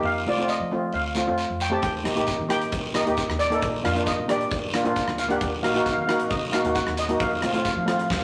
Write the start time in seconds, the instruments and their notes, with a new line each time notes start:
0.03 upright bass F2, steel pan F5, long guiro
0.26 upright bass C2, steel pan A3 C4 F4 D5
0.38 steel pan A3 C4 F4
0.48 steel pan D#5, short guiro
0.60 upright bass F3
0.71 steel pan A3 C4 F4
0.93 upright bass D2, steel pan F5, long guiro
1.15 steel pan A3 C4 F4, short guiro
1.27 upright bass F2, steel pan A3 C4 F4
1.38 short guiro
1.50 upright bass F2
1.60 steel pan G5, short guiro
1.70 steel pan A3 C4 G4 A5
1.82 upright bass D#2, steel pan G5, kick, closed hi-hat, long guiro
2.04 upright bass A#1, steel pan A#3 D#4 G4, cross-stick, closed hi-hat
2.15 steel pan A#3 D#4 G4, closed hi-hat
2.27 kick, closed hi-hat, short guiro
2.40 upright bass D#3
2.49 steel pan A#3 D#4 G4 G5, cross-stick, closed hi-hat
2.61 closed hi-hat
2.72 upright bass C2, kick, closed hi-hat, long guiro
2.94 steel pan A#3 D#4 G4 D#5, cross-stick, closed hi-hat, short guiro
3.06 upright bass D#2, steel pan A#3 D#4 G4, closed hi-hat
3.17 kick, closed hi-hat, short guiro
3.28 upright bass D#2, cross-stick
3.39 steel pan D5, closed hi-hat, short guiro
3.50 steel pan A#3 D#4 A4, closed hi-hat
3.62 upright bass A#1, kick, closed hi-hat, long guiro
3.83 upright bass F2, steel pan A#3 D4 F4 F5, cross-stick, closed hi-hat
3.95 steel pan A#3 D4 F4, closed hi-hat
4.06 steel pan D#5, kick, closed hi-hat, short guiro
4.19 upright bass A#2
4.28 steel pan A#3 D4 G4 D5, cross-stick, closed hi-hat
4.41 closed hi-hat
4.51 upright bass G1, kick, closed hi-hat, long guiro
4.73 steel pan A#3 D4 F4, cross-stick, closed hi-hat, short guiro
4.84 upright bass A#1, steel pan A#3 D4 F4, closed hi-hat
4.96 kick, closed hi-hat, short guiro
5.07 upright bass D2, cross-stick
5.18 steel pan F5, closed hi-hat, short guiro
5.29 steel pan A#3 D4 G4 F#5, closed hi-hat
5.41 upright bass D#2, kick, closed hi-hat, long guiro
5.63 upright bass A#1, steel pan A#3 D#4 F#4 F5, cross-stick, closed hi-hat
5.70 steel pan F5
5.74 steel pan A#3 D#4 F#4 F5, closed hi-hat
5.86 steel pan F5, kick, closed hi-hat, short guiro
5.92 steel pan F5
5.96 upright bass D#3, steel pan F5
6.07 steel pan A#3 D#4 F#4 F5, cross-stick, closed hi-hat
6.14 steel pan F5
6.20 closed hi-hat
6.30 upright bass C2, steel pan D#5, kick, closed hi-hat, long guiro
6.52 steel pan A#3 D#4 F#4 F5, cross-stick, closed hi-hat, short guiro
6.64 upright bass D#2, steel pan A#3 D#4 F#4, closed hi-hat
6.75 steel pan F#5, kick, closed hi-hat, short guiro
6.86 upright bass D#2, cross-stick
6.97 steel pan D#5, closed hi-hat, short guiro
7.09 steel pan A#3 D#4 F#4, closed hi-hat
7.20 upright bass F2, steel pan F5, kick, closed hi-hat, long guiro
7.28 steel pan F5
7.42 upright bass C2, steel pan A3 C4 F4 F5, cross-stick, closed hi-hat
7.51 steel pan A3 C4 F5, closed hi-hat
7.56 steel pan F4 F5
7.65 steel pan F5, kick, closed hi-hat, short guiro
7.74 upright bass F3, steel pan F5
7.80 steel pan F5
7.86 steel pan A3 C4 F4 F5, cross-stick, closed hi-hat
7.96 steel pan F5, closed hi-hat
8.03 steel pan F5
8.10 upright bass D2, steel pan F5, kick, snare, long guiro
8.18 steel pan F5